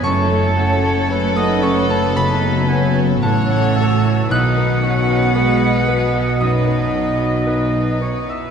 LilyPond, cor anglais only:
\new Staff \with { instrumentName = "Cor anglais" } { \time 4/4 \key fis \dorian \tempo 4 = 57 a''4 b'4 a''8 gis''8 fis''8 e''8 | dis''8 cis''8 dis''2. | }